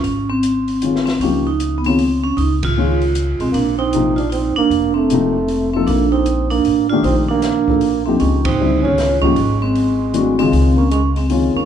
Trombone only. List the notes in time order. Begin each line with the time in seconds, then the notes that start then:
3.39 G#3
3.52 A#3
3.78 C4
4.17 D4
4.32 C4
4.58 A#3
4.96 A3
5.74 A3
5.87 A#3
6.11 C4
6.51 A#3
6.90 D4
7.04 C4
7.30 A#3
8.06 A3
8.19 G#3
8.45 C4
8.82 C#4
9.22 G#3
9.61 G#3
10.39 G#3
10.76 A#3
10.91 G#3
11.16 G#3
11.30 G#3
11.54 A#3